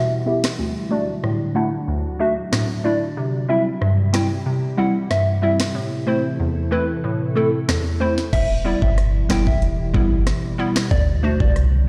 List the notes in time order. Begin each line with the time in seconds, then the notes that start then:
Already playing: B2 E3 G3 E4 G4
0.26 B3 E4 G4 E5
0.44 cross-stick, snare
0.59 D2 A2 D3 F#3 D4 F#4
0.91 A3 D4 F#4 D5
1.23 A2, cross-stick
1.55 A3 D4 E4 F#5
1.88 D2
2.19 A3 D4 F#4 E5
2.52 A2, cross-stick, snare
2.84 A3 D4 E4 D5
3.17 C3 E3 G3 E4 G4
3.49 G3 C4 E4 E5
3.81 G2, cross-stick
4.13 G3 C4 E4 G5, cross-stick, snare
4.46 C3
4.77 G3 C4 E4 F#5
5.10 G2 E5, cross-stick, snare
5.42 G3 C4 E4 E5
5.60 cross-stick, snare
5.75 A2 A3 A4
6.07 A3 C4 E4 C5
6.40 E2
6.71 A3 C4 E4 B4
7.04 A2
7.35 A3 C4 E4 A4
7.68 E2, cross-stick, snare
8.00 A3 C4 E4 C5
8.18 snare
8.33 E1 B2 E3 G3 E4 G4 E5, kick, closed hi-hat, crash
8.65 G3 B3 E4 D5
8.82 G1 E5, kick
8.98 cross-stick, closed hi-hat
9.29 F#1 G3 B3 E4 G5, cross-stick, snare
9.47 E5, kick
9.62 E1, closed hi-hat
9.94 G3 B3 E4, kick
10.12 G1
10.27 cross-stick, snare, closed hi-hat
10.58 G3 B3 E4
10.76 cross-stick, snare
10.91 D2 A2 D3 F#3 D4 F#4 D5, kick, closed hi-hat
11.23 A3 D4 F#4 C5
11.40 C2 D5, kick
11.56 cross-stick, closed hi-hat